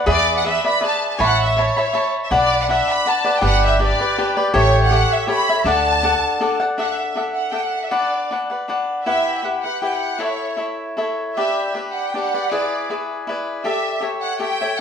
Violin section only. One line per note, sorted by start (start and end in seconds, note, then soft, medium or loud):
0.11 0.36 D5 loud
0.39 0.46 F#5 medium
0.47 0.64 E5 medium
0.68 0.83 B5 medium
0.87 1.09 A5 medium
1.10 1.12 A5 medium
1.17 1.22 G#5 medium
1.24 1.40 F#5 medium
1.45 1.59 E5 medium
1.61 2.15 C#5 medium
2.24 2.30 E5 soft
2.36 2.61 D5 medium
2.62 2.69 F#5 medium
2.72 2.88 E5 medium
2.90 3.06 B5 medium
3.09 3.35 A5 medium
3.37 3.44 G5 medium
3.45 3.62 F#5 medium
3.65 3.80 E5 medium
3.84 4.38 D5 medium
4.57 4.82 C#5 medium
4.85 5.10 F#5 medium
5.12 5.28 E5 medium
5.30 5.63 B5 medium
5.66 6.56 A5 medium
6.78 6.84 E5 medium
6.83 6.91 F#5 medium
6.92 7.15 E5 medium
7.34 7.51 F#5 medium
7.52 7.62 G5 medium
7.62 7.84 F#5 medium
7.83 7.91 E5 soft
7.91 8.29 D5 medium
9.04 9.40 E5 medium
9.62 9.79 F#5 medium
9.81 9.90 G5 medium
9.93 10.20 F#5 medium
10.22 10.59 C#5 medium
11.35 11.70 E5 medium
11.90 12.09 F#5 medium
12.09 12.20 G5 medium
12.20 12.47 F#5 medium
12.50 12.88 D5 medium
13.65 14.00 E5 medium
14.21 14.38 F#5 medium
14.41 14.76 G5 medium